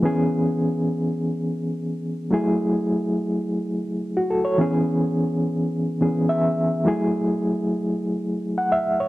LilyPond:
\new Staff \with { instrumentName = "Reed electric piano" } { \time 4/4 \key fis \minor \tempo 4 = 105 << { r1 | r2. r16 fis'16 a'16 cis''16~ | cis''16 r2 r8. e''4 | r2. fis''16 e''8 cis''16 | } \\ { <e b cis' gis'>1 | <fis a e' gis'>1 | <e b cis' gis'>2~ <e b cis' gis'>8 <e b cis' gis'>4. | <fis a e' gis'>2.~ <fis a e' gis'>8 r8 | } >> }